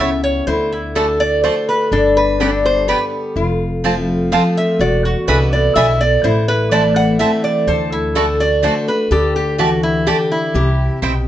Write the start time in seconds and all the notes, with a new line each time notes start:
Already playing: E4
0.00 C#2 C#3 E5 A5
0.24 C#5
0.47 D2 D3 E4 C5
0.72 E4
0.95 D3 A3 D4 F#4 A4 D5 A5
1.20 D5
1.44 D3 A3 D4 F#4 C5 D5 A5
1.69 B4
1.92 G1 G2 D4 A4
2.17 B4
2.40 D3 G3 B3 D4 G4 A4 D5 G5
2.66 C5
2.88 D3 G3 B3 G4 B4 D5 G5
3.36 F1 F2 F4
3.84 F3 A3 C4 F4 C5 A5
3.98 E4
4.32 F3 A3 C4 F4 C5 F5 A5
4.57 E5
4.79 E1 E2 F#4 D5
5.05 F#4
5.28 C2 D3 G#3 B3 D4 E4 G#4 B4 E5 B5
5.53 B3 E4 D5
5.76 B1 D3 G#3 B3 D4 E4 G#4 E5 B5
6.01 B3 E4 D5
6.23 A1 A2 E4 C5
6.48 B4
6.71 E3 A3 C4 E4 C5 D5 A5
6.96 F#5
7.19 E3 A3 C4 E4 C5 E5 A5
7.44 D5
7.67 D2 D3 A4 C5
7.92 E4
8.15 D3 A3 D4 F#4 A4 D5 A5
8.40 D4 F#4 D5
8.63 D3 A3 D4 F#4 C5 D5 A5
8.88 D4 F#4 B4
9.11 D2 D3 G4 A4
9.36 G4
9.58 E3 A3 F#4 G4 D5 A5
9.83 E4
10.07 D3 A3 G4 D5 A5
10.32 E4
10.54 C2 C3 G4
11.02 B1 B2 C4 E4 C5 G5